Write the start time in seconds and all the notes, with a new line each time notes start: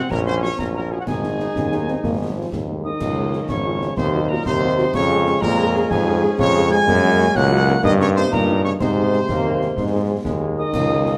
Already playing: C4 F#5
0.10 A#1 C#4 A#4 A#5, concert bass drum, snare
0.26 F#3 C#4 F#4 C5 C6
0.42 F#3 C#4 F#4 C#5 C#6, snare
0.58 A#1 A#4 A#5, concert bass drum, snare
0.74 F#3 C#4 F#4 A#4 A#5
0.91 F#3 C#4 F#4 G#4 G#5
1.00 F#4 F#5
1.06 G#1 D#4 G#4 G#5, concert bass drum, snare, crash
1.23 G#3 C#4 D#4, snare
1.39 G#3 C#4 D#4, snare
1.55 D#2 C#4, concert bass drum, snare
1.71 G#3 C#4 D#4, snare
1.81 A#3
1.88 G#3 C4 C#4 D#4, snare
2.03 G#1 A#3, concert bass drum, snare
2.19 G#3 C4 D#4
2.29 F#3
2.36 F3 G#3 C4 D#4
2.52 D#2 G#3, concert bass drum, snare
2.68 G#3 A#3 C4 D#4
2.77 G#3
2.84 D#3 G#3 C4 D#4 D#5 D#6
3.00 C#2 F3 C#4, concert bass drum, snare, crash
3.17 G#3 C#4 F4
3.32 G#3 C#4 F4, snare
3.48 G#1 C#3 C#5 C#6, concert bass drum, snare
3.65 G#3 C#4 F4
3.81 G#3 C#4 F4, snare
3.97 D#2 C3 F#3 D#4 C5 C6, concert bass drum, snare
4.14 C4 F#4
4.29 A#2 C4 F#4 A#4 A#5
4.45 D#2 C3 C5 C6, concert bass drum, snare
4.62 C4 F#4
4.78 C4 F#4, snare
4.93 F2 C#3 G#3 C#4 C#5 C#6, concert bass drum, snare, crash
5.11 G#3 C#4 G#4
5.26 G#3 C#4 G#4, snare
5.41 F2 A#2 A#4 A#5, concert bass drum, snare
5.58 G#3 C#4 G#4
5.74 G#3 C#4 G#4, snare
5.90 F2 G#2 G#4 G#5, concert bass drum, snare
6.07 G#3 C#4 G#4
6.22 G#3 C#4 G#4
6.38 F2 C#3 C#5 C#6, concert bass drum, snare
6.54 G#3 C#4 G#4
6.70 G#3 C#4 G#4 G#5 G#6, snare
6.87 F#2 A#3 C#4, concert bass drum, snare, crash
7.03 A#3 C#4 F#4
7.19 A#3 C#4 F#4, snare
7.35 C#2 F#3 F#5 F#6, concert bass drum, snare
7.51 A#3 C#4 F#4
7.67 A#3 C#4 F#4, snare
7.83 G2 D#3 D#4 D#5 D#6, concert bass drum, snare
8.00 C#3 A#3 C#4 D#4 C#5 C#6
8.16 C3 A#3 C#4 D#4 C5 C6
8.32 G2 A#2 A#4 A#5, concert bass drum, snare
8.48 A#3 C#4 D#4
8.64 C#3 A#3 C#4 D#4 C#5 C#6, snare
8.80 G#2 C3 G#3 D#4 C5 C6, concert bass drum, snare, crash
8.97 G#3 D#4 G#4
9.13 G#3 D#4 G#4, snare
9.28 D#2 A#3, concert bass drum, snare
9.45 G#3 D#4 G#4
9.61 G#3 D#4 G#4, snare
9.76 G#2 G#3, concert bass drum, snare
9.93 G#3 D#4 G#4
10.09 F#3 G#3 D#4 G#4
10.25 D#2 G#3, concert bass drum, snare
10.42 G#3 D#4 G#4
10.57 D#3 G#3 D#4 G#4 D#5 D#6
10.73 C#2 G#3 F4, concert bass drum, snare, crash
10.89 G#3 F4 G#4
11.06 G#3 F4 G#4, snare